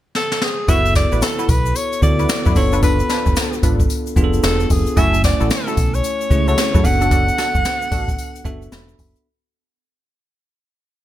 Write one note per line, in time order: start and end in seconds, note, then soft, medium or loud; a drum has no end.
0.15 0.44 A4 loud
0.15 snare medium
0.32 snare medium
0.42 0.71 G#4 loud
0.42 snare medium
0.68 1.05 F#1 loud
0.68 1.56 B3 medium
0.68 0.86 E4 medium
0.68 1.56 E4 medium
0.68 0.86 F#4 medium
0.68 1.56 F#4 medium
0.68 1.56 A4 medium
0.68 0.86 B4 loud
0.68 0.96 E5 loud
0.68 kick loud
0.68 closed hi-hat medium
0.68 tambourine medium
0.68 shaker medium
0.85 closed hi-hat medium
0.85 shaker medium
0.95 1.24 D5 loud
0.95 kick loud
0.95 snare medium
0.95 closed hi-hat medium
0.95 tambourine medium
0.95 shaker soft
1.12 1.20 A1 medium
1.12 1.24 E4 medium
1.12 1.24 F#4 medium
1.12 1.24 B4 loud
1.12 closed hi-hat soft
1.12 shaker medium
1.22 1.51 A4 medium
1.22 snare loud
1.22 tambourine loud
1.22 shaker medium
1.39 1.51 E4 medium
1.39 1.51 F#4 medium
1.39 1.51 B4 medium
1.39 closed hi-hat medium
1.39 shaker medium
1.49 1.71 B1 medium
1.49 1.78 B4 medium
1.49 kick loud
1.49 closed hi-hat medium
1.49 tambourine medium
1.49 shaker soft
1.65 closed hi-hat medium
1.65 shaker medium
1.75 2.03 C#5 loud
1.75 closed hi-hat medium
1.75 tambourine medium
1.75 shaker medium
1.92 closed hi-hat medium
1.92 shaker soft
2.02 2.25 D2 medium
2.02 2.54 B3 medium
2.02 2.56 E4 medium
2.02 2.56 F#4 medium
2.02 2.55 A4 medium
2.02 2.58 D5 loud
2.02 kick loud
2.02 closed hi-hat medium
2.02 shaker medium
2.19 2.31 E4 medium
2.19 2.31 F#4 medium
2.19 2.31 B4 medium
2.19 closed hi-hat medium
2.19 shaker soft
2.29 snare loud
2.29 tambourine loud
2.29 shaker medium
2.46 2.54 F#2 loud
2.46 2.58 E4 medium
2.46 2.58 F#4 medium
2.46 2.58 B4 medium
2.46 kick loud
2.46 closed hi-hat medium
2.46 shaker medium
2.55 3.01 F#1 medium
2.55 3.43 B3 medium
2.55 3.43 D4 medium
2.55 3.44 F4 medium
2.55 3.44 A4 medium
2.55 2.83 C#5 loud
2.55 kick medium
2.55 open hi-hat medium
2.55 tambourine medium
2.55 shaker medium
2.72 2.81 D4 medium
2.72 2.81 F4 medium
2.72 2.82 A4 medium
2.72 2.82 B4 medium
2.72 closed hi-hat medium
2.72 shaker medium
2.82 3.00 D4 medium
2.82 3.01 F4 medium
2.82 3.01 A4 medium
2.82 3.01 B4 loud
2.82 3.60 B4 medium
2.82 kick loud
2.82 closed hi-hat medium
2.82 tambourine medium
2.82 shaker medium
2.99 closed hi-hat medium
2.99 shaker soft
3.09 3.27 D4 medium
3.09 3.27 F4 medium
3.09 3.28 A4 medium
3.09 3.28 B4 medium
3.09 snare medium
3.09 closed hi-hat medium
3.09 tambourine medium
3.09 shaker medium
3.26 3.35 F1 medium
3.26 kick medium
3.26 closed hi-hat soft
3.26 shaker medium
3.36 snare loud
3.36 tambourine loud
3.36 shaker medium
3.53 closed hi-hat soft
3.53 shaker medium
3.63 3.85 G#1 loud
3.63 3.81 D4 medium
3.63 3.81 F4 medium
3.63 3.81 A4 medium
3.63 3.81 B4 medium
3.63 kick loud
3.63 closed hi-hat medium
3.63 tambourine medium
3.63 shaker soft
3.80 kick loud
3.80 closed hi-hat medium
3.80 shaker medium
3.90 closed hi-hat medium
3.90 tambourine medium
3.90 shaker medium
4.07 closed hi-hat medium
4.07 shaker soft
4.16 4.39 F1 loud
4.16 4.84 B3 medium
4.16 4.84 D4 medium
4.16 4.84 F4 medium
4.16 4.25 G#4 medium
4.16 kick loud
4.16 closed hi-hat medium
4.16 shaker medium
4.24 4.88 A4 loud
4.33 closed hi-hat medium
4.33 shaker soft
4.43 4.66 E1 loud
4.43 4.73 A4 medium
4.43 snare loud
4.43 tambourine loud
4.43 shaker medium
4.60 closed hi-hat soft
4.60 shaker medium
4.70 4.84 F1 medium
4.70 4.99 G#4 medium
4.70 kick medium
4.70 open hi-hat medium
4.70 tambourine medium
4.70 shaker medium
4.87 closed hi-hat medium
4.87 shaker medium
4.97 5.33 F#1 loud
4.97 5.84 A3 medium
4.97 5.85 C#4 medium
4.97 5.15 E4 medium
4.97 5.85 E4 medium
4.97 5.15 F#4 medium
4.97 5.15 A4 loud
4.97 5.24 E5 loud
4.97 5.85 G#5 medium
4.97 kick loud
4.97 closed hi-hat medium
4.97 tambourine medium
4.97 shaker medium
5.14 closed hi-hat medium
5.14 shaker medium
5.24 5.49 D5 loud
5.24 kick loud
5.24 snare medium
5.24 closed hi-hat medium
5.24 tambourine medium
5.24 shaker medium
5.40 5.49 A1 loud
5.40 5.52 E4 medium
5.40 5.52 F#4 medium
5.40 5.53 A4 loud
5.40 closed hi-hat soft
5.40 shaker medium
5.50 5.96 A4 medium
5.50 snare loud
5.50 tambourine loud
5.50 shaker medium
5.67 5.79 E4 medium
5.67 5.79 F#4 medium
5.67 5.79 A4 medium
5.67 closed hi-hat soft
5.67 shaker medium
5.77 6.00 B1 medium
5.77 kick loud
5.77 closed hi-hat medium
5.77 tambourine medium
5.77 shaker soft
5.94 6.48 C#5 loud
5.94 closed hi-hat medium
5.94 shaker medium
6.04 closed hi-hat medium
6.04 tambourine medium
6.04 shaker medium
6.21 closed hi-hat medium
6.21 shaker soft
6.30 6.53 C#2 medium
6.30 6.84 A3 medium
6.30 6.85 C#4 medium
6.30 6.85 E4 medium
6.30 6.85 G#4 medium
6.30 kick loud
6.30 closed hi-hat medium
6.30 shaker medium
6.47 6.59 E4 medium
6.47 6.59 F#4 medium
6.47 6.60 A4 medium
6.47 6.87 C#5 loud
6.47 closed hi-hat medium
6.47 shaker soft
6.58 snare loud
6.58 tambourine loud
6.58 shaker medium
6.74 6.83 F#2 medium
6.74 6.86 E4 medium
6.74 6.86 F#4 medium
6.74 6.86 A4 medium
6.74 kick loud
6.74 closed hi-hat medium
6.74 shaker medium
6.84 7.29 F#1 loud
6.84 7.72 B3 medium
6.84 7.72 D4 medium
6.84 7.72 F#4 medium
6.84 7.73 A4 medium
6.84 8.72 F#5 loud
6.84 kick medium
6.84 open hi-hat medium
6.84 tambourine medium
6.84 shaker medium
7.01 7.10 D4 medium
7.01 7.10 F#4 medium
7.01 7.10 A4 medium
7.01 closed hi-hat medium
7.01 shaker medium
7.11 7.29 D4 medium
7.11 7.29 F#4 medium
7.11 7.29 A4 loud
7.11 kick loud
7.11 closed hi-hat medium
7.11 tambourine medium
7.11 shaker medium
7.28 closed hi-hat medium
7.28 shaker medium
7.38 7.56 D4 medium
7.38 7.56 F#4 medium
7.38 7.56 A4 medium
7.38 snare medium
7.38 closed hi-hat medium
7.38 tambourine medium
7.38 shaker medium
7.55 7.63 F#1 medium
7.55 kick medium
7.55 closed hi-hat soft
7.55 shaker medium
7.65 snare loud
7.65 tambourine loud
7.65 shaker medium
7.82 closed hi-hat medium
7.82 shaker medium
7.91 8.14 A1 medium
7.91 8.09 D4 medium
7.91 8.09 F#4 medium
7.91 8.10 A4 medium
7.91 kick loud
7.91 open hi-hat medium
7.91 tambourine medium
7.91 shaker soft
8.08 kick loud
8.08 closed hi-hat medium
8.08 shaker medium
8.19 closed hi-hat medium
8.19 tambourine medium
8.19 shaker medium
8.35 closed hi-hat medium
8.35 shaker soft
8.45 8.67 F#1 loud
8.45 9.12 B3 medium
8.45 9.13 D4 medium
8.45 9.13 F#4 medium
8.45 9.13 A4 loud
8.45 8.70 E5 medium
8.45 kick loud
8.45 closed hi-hat medium
8.45 shaker medium
8.62 closed hi-hat medium
8.62 shaker soft
8.72 8.95 E1 loud
8.72 9.22 B5 medium
8.72 snare loud
8.72 tambourine loud
8.72 shaker medium
8.88 closed hi-hat soft
8.88 shaker medium
8.99 9.13 F#1 medium
8.99 kick medium
8.99 open hi-hat medium
8.99 tambourine medium
8.99 shaker medium
9.16 closed hi-hat medium
9.16 shaker medium